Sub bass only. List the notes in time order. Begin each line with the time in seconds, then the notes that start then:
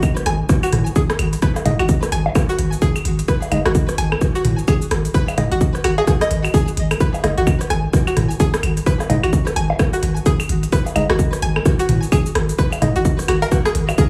0.26 G#1
0.73 G#1
1.19 G#1
1.66 F#1
1.79 G#1
2.12 G#1
2.59 G#1
3.05 G#1
3.52 F#1
3.65 G#1
3.98 G#1
4.45 G#1
4.91 G#1
5.38 F#1
5.52 G#1
5.84 G#1
6.31 G#1
6.77 G#1
7.24 F#1
7.38 G#1
7.70 G#1
8.17 G#1
8.63 G#1
9.10 F#1
9.24 G#1
9.56 G#1
10.03 G#1
10.49 G#1
10.96 F#1
11.10 G#1
11.42 G#1
11.89 G#1
12.35 G#1
12.82 F#1
12.96 G#1
13.28 G#1
13.75 G#1